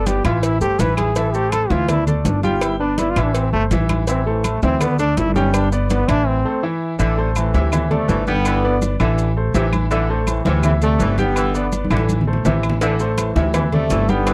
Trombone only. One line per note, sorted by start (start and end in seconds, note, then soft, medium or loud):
0.07 0.25 G4 medium
0.26 0.45 F4 medium
0.44 0.61 E4 loud
0.62 0.81 G4 loud
0.80 0.97 B4 loud
0.98 1.18 G#4 loud
1.17 1.35 A4 medium
1.34 1.54 G4 loud
1.52 1.72 A4 loud
1.70 1.91 F4 loud
1.90 2.07 E4 loud
2.07 2.23 A3 medium
2.25 2.43 D4 medium
2.43 2.63 F4 loud
2.62 2.79 E4 medium
2.80 3.00 D4 loud
2.99 3.12 E4 loud
3.10 3.25 F4 loud
3.23 3.37 D4 medium
3.35 3.52 C4 medium
3.53 3.64 A3 loud
4.08 4.25 C4 medium
4.27 4.47 E3 medium
4.46 4.63 A3 medium
4.64 4.82 C4 loud
4.81 4.99 B3 loud
4.99 5.19 D4 loud
5.18 5.34 E4 loud
5.35 5.55 C#4 medium
5.53 5.71 D4 medium
5.72 5.88 G3 medium
5.91 6.10 B3 loud
6.08 6.29 D4 loud
6.27 6.63 C4 loud